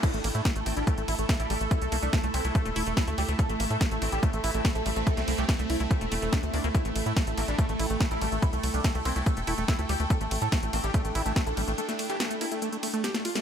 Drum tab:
CC |x---------------|----------------|----------------|----------------|
RD |--x---x---x---x-|--x---x---x---x-|--x---x---x---x-|--x---x---x---x-|
HH |xxoxxxoxxxoxxxox|xxoxxxoxxxoxxxox|xxoxxxoxxxoxxxox|xxoxxxoxxxoxxxox|
SD |----o-------o---|----o-------o---|----o-------o---|-o--o-------o---|
BD |o---o---o---o---|o---o---o---o---|o---o---o---o---|o---o---o---o---|

CC |----------------|----------------|----------------|----------------|
RD |--x---x---x---x-|--x---x---x---x-|--x---x---x---x-|--x---x---x---x-|
HH |xxoxxxoxxxoxxxox|xxoxxxoxxxoxxxox|xxoxxxoxxxoxxxox|xxoxxxoxxxoxxxox|
SD |----o-------o---|----o-------o---|----o-------o---|-o--o-------oo-o|
BD |o---o---o---o---|o---o---o---o---|o---o---o---o---|----------------|